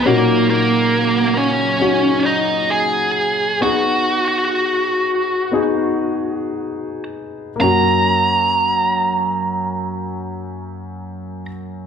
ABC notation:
X:1
M:4/4
L:1/8
Q:1/4=61
K:F#
V:1 name="Lead electric guitar"
[A,A] [A,A]2 [Cc]2 [Dd] [Gg]2 | [Ff]6- [Ff] z | a8 |]
V:2 name="Grand piano"
[CDF]4 [CDF]4 | [B,DG]4 [B,DG]4 | [A,CF]8 |]
V:3 name="Grand piano" clef=bass
A,,3 z4 z | z8 | F,,8 |]
V:4 name="String section" clef=bass
[C,F,A,D]8 | z8 | z8 |]